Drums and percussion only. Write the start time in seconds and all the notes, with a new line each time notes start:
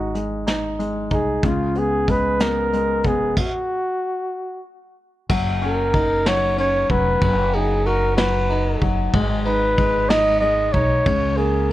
0.15 closed hi-hat
0.47 snare, closed hi-hat
0.80 closed hi-hat
1.10 kick, closed hi-hat
1.43 kick, closed hi-hat
1.75 closed hi-hat
2.08 kick, closed hi-hat
2.40 snare, closed hi-hat
2.73 closed hi-hat
3.04 kick, closed hi-hat
3.37 kick, crash
5.30 kick, crash
5.62 ride
5.94 kick, ride
6.26 snare, ride
6.58 ride
6.90 kick, ride
7.22 kick, ride
7.53 ride
7.86 ride
8.17 snare, ride
8.50 ride
8.81 kick, ride
9.13 kick, ride
9.45 ride
9.78 kick, ride
10.10 snare, ride
10.42 ride
10.73 kick, ride
11.06 kick, ride
11.37 ride